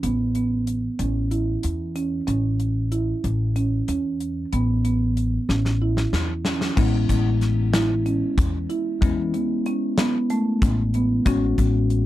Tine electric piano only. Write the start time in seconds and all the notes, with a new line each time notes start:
6.76 G#3 B3 C#4 E4
9.01 G#3 B3 C#4 E4
11.26 G#3 B3 C#4 F#4